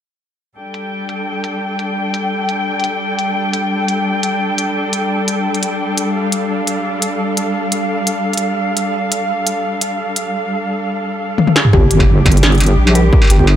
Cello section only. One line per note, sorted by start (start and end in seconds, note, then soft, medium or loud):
0.57 11.69 G3 medium
0.57 11.69 D4 medium
0.57 11.69 A4 medium
0.57 6.13 G5 medium
6.15 11.71 F5 medium
11.73 13.56 G3 medium
11.73 13.56 D4 medium
11.73 13.56 G4 medium